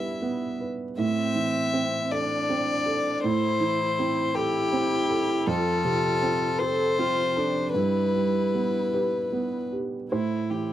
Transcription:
0.00 0.95 G2 soft
0.00 1.02 G3 soft
0.00 0.22 B3 soft
0.00 0.42 E4 medium
0.00 0.45 B4 soft
0.00 0.60 E5 medium
0.22 0.84 B3 soft
0.60 0.99 B4 soft
0.98 3.20 A2 medium
0.98 2.14 C4 medium
0.98 2.13 E5 medium
1.35 1.97 E3 soft
1.74 2.35 C4 soft
2.12 3.26 D4 medium
2.12 2.72 A4 soft
2.12 3.23 D5 medium
2.50 3.09 C4 soft
2.86 3.46 A4 soft
3.23 5.42 A2 medium
3.23 4.36 E4 medium
3.23 4.37 C5 loud
3.60 4.20 E3 soft
3.99 4.58 C4 soft
4.35 5.49 E4 medium
4.35 5.48 G4 loud
4.35 4.94 A4 medium
4.73 5.32 C4 medium
5.10 5.47 A4 medium
5.46 7.72 F2 medium
5.46 6.61 F4 medium
5.46 6.60 A4 loud
5.84 6.44 C3 soft
6.22 6.83 C4 medium
6.59 7.00 A4 medium
6.59 7.21 A4 medium
6.59 7.73 C5 loud
6.99 7.60 C4 medium
6.99 7.39 F4 medium
7.36 7.77 D4 medium
7.36 7.75 A4 soft
7.74 10.07 G2 medium
7.74 9.53 E4 soft
7.74 9.68 B4 medium
8.14 8.78 G3 soft
8.55 9.17 B3 soft
8.93 9.57 G4 soft
8.93 10.08 B4 medium
9.33 9.96 B3 soft
9.72 10.11 G4 soft
10.12 10.73 A2 soft
10.12 10.73 E4 soft
10.12 10.52 E4 medium
10.12 10.73 C5 medium
10.51 10.73 E3 soft
10.51 10.73 G4 soft

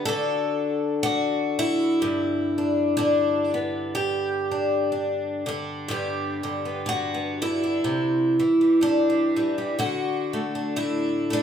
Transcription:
0.05 2.97 D3 medium
0.05 1.05 D4 soft
0.05 1.58 A4 loud
0.10 1.02 F#4 soft
1.03 2.58 D4 medium
1.03 2.01 F#4 loud
1.59 3.94 E4 loud
2.02 5.85 G2 medium
2.58 2.96 D4 soft
2.97 5.45 D3 medium
2.97 4.50 D4 medium
3.54 5.85 B3 soft
3.95 5.90 G4 medium
4.51 4.91 D4 soft
4.92 5.47 D4 soft
5.46 5.88 D3 medium
5.46 5.89 D4 medium
5.88 7.79 G2 medium
5.88 6.42 D3 soft
5.88 6.64 B3 soft
5.88 6.88 D4 soft
5.88 7.41 G4 medium
6.43 6.85 D3 medium
6.65 7.13 B3 soft
6.86 7.41 D3 medium
6.86 7.63 F#4 medium
7.14 7.79 B3 soft
7.42 8.39 D3 medium
7.42 9.79 E4 medium
7.64 7.87 D4 soft
7.84 8.39 C3 medium
8.40 9.35 E3 medium
8.61 9.08 G3 soft
8.81 9.74 G2 medium
8.81 9.79 D4 medium
9.10 9.36 G3 soft
9.36 9.74 E3 medium
9.36 9.57 G3 soft
9.58 9.79 G3 soft
9.79 11.43 D3 medium
9.79 10.76 F#4 medium
10.33 11.29 A3 medium
10.55 11.31 D4 soft
10.76 11.43 A2 medium
10.76 11.43 E4 medium
11.30 11.43 A3 medium
11.30 11.43 D4 medium

